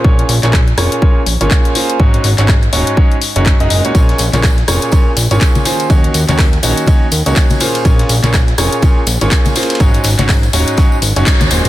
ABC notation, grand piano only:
X:1
M:4/4
L:1/16
Q:"Swing 16ths" 1/4=123
K:Bbm
V:1 name="Grand piano"
[B,,B,DFAd]2 z [B,,B,DFAd] z2 [B,,B,DFAd]2 [B,,B,DFAd] z2 [B,,B,DFAd]3 [B,DFAc]2 | [A,,A,DEGd]2 z [A,,A,DEGd] z2 [A,,A,DEGd]2 [A,,A,DEGd] z2 [A,,A,DEGd]2 [A,,A,DEGe] [B,,A,DEGe] [B,,A,DEGd] | [B,,B,DFAd]2 z [B,,B,DFAd] z2 [B,,B,DFAd]2 [B,,B,DFAd] z2 [B,,B,DFAd]3 [E,B,DFAc]2 | [E,B,DEGd]2 z [E,B,DEGd] z2 [E,B,DEGd]2 [E,B,DEGd] z2 [E,B,DEGd]3 [B,,B,DFAc]2 |
[B,,B,DFAd]2 z [B,,B,DFAd] z2 [B,,B,DFAd]2 [B,,DFAd] z2 [B,,B,DFAd]3 [B,DFAc]2 | [A,,A,DEGd]2 z [A,,A,DEGd] z2 [A,,A,DEGd]2 [A,,A,DEGd] z2 [A,,A,DEGd]3 [B,,A,DEGc]2 |]